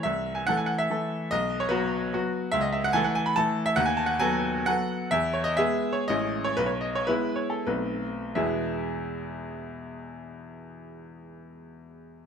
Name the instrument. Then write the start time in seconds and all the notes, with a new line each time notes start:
grand piano
0.03 C2 E5
0.35 G#5
0.47 E3 A3 A4 F#5
0.57 G#5
0.66 F#5
0.78 E5
0.90 E3 A3 A4
1.31 B1 D#5
1.60 C#5
1.69 F#3 B3 F#4 B4
2.13 F#3 B3 F#4
2.52 C#2 E5
2.61 D#5
2.73 E5
2.84 F#5
2.93 E3 A3 A4 G#5
3.04 F#5
3.15 G#5
3.26 B5
3.36 E3 A3 A4 A5
3.66 E5
3.76 D#2 F#5
3.86 G#5
3.97 A5
4.06 F#5
4.20 F#3 B3 A4 G#5
4.66 F#3 B3 A4 F#5
5.11 E2 E5
5.33 C#5
5.44 D#5
5.57 G#3 B3 G#4 E5
5.93 C#5
6.08 A1 G#3 C#4 E4 D#5
6.44 C#5
6.57 B1 B4
6.66 C#5
6.81 D#5
6.95 C#5
7.07 G#3 B3 E4 B4
7.36 C#5
7.50 A4
7.67 B1 A3 C4 D#4 B4
8.35 E2 B2 G#3 B3 E4 G#4 E5